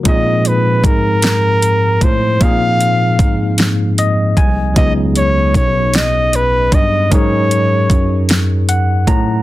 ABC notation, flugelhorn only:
X:1
M:6/8
L:1/8
Q:3/8=51
K:Dbmix
V:1 name="Flugelhorn"
e c B3 =c | f3 z3 | e d d e c e | d3 z3 |]